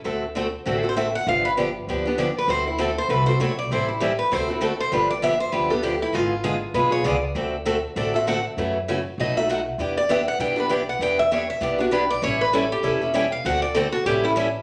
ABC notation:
X:1
M:4/4
L:1/8
Q:"Swing" 1/4=197
K:Dmix
V:1 name="Steel-string acoustic guitar"
z4 (3F A c e f | =f B z2 G2 d B | c E A c B c ^c d | c E G B c E A c |
B d e c B A G E | ^E4 B ^c d z | z4 d e f z | z4 ^d e f z |
z d e f g B d f | g e ^c e d F B d | ^c B A G2 z g =f | f d A F G E z2 |]
V:2 name="Steel-string acoustic guitar"
[D,A,CFA] z [D,A,CFA] z [D,A,CFA] [CFA] [D,A,CFA] z | [D,=F,B,DG] z [D,F,B,DG] z [D,F,B,DG] [B,DG] [D,F,B,DG] z | [D,A,CFA] z [D,A,CFA] z [D,A,CFA] [CFA] [D,A,CFA] z | [E,G,CEA] z [E,G,CEA] z [D,A,CFA] [CFA] [D,A,CFA] z |
[D,=F,B,DG] z [D,F,B,DG] z [D,F,B,DG] [B,DG] [D,F,B,DG] z | [D,^G,B,^E^G] z [D,G,B,EG] z [D,G,B,EG] [B,EG] [D,G,B,EG] z | [D,A,CFA] z [D,A,CFA] z [D,A,CFA] [CFA] [D,A,CFA] z | [^C,E,A,^CF] z [C,E,A,CF] z [B,,F,A,^DF] [A,DF] [B,,F,A,DF] z |
[E,B,DG] z [E,B,DG] z [E,B,DG] [B,DG] [E,B,DG] z | [E,B,DG] z [E,B,DG] z [E,B,DG] [B,DG] [E,B,DG] z | [E,G,^CEA] z [E,G,CEA] z [E,G,CEA] [CEA] [E,G,CEA] z | [D,A,CFA] z [D,A,CFA] z [E,G,^CEA] [CEA] [E,G,CEA] z |]
V:3 name="Upright bass" clef=bass
D,,4 A,,,4 | G,,,4 D,,4 | D,,4 C,,2 B,,,2 | A,,,4 D,,4 |
G,,,4 D,,4 | ^G,,,4 B,,,2 ^C,,2 | D,,4 A,,,4 | F,,4 B,,,4 |
E,,4 B,,,4 | E,,4 B,,,4 | A,,,4 E,,,4 | D,,4 A,,,4 |]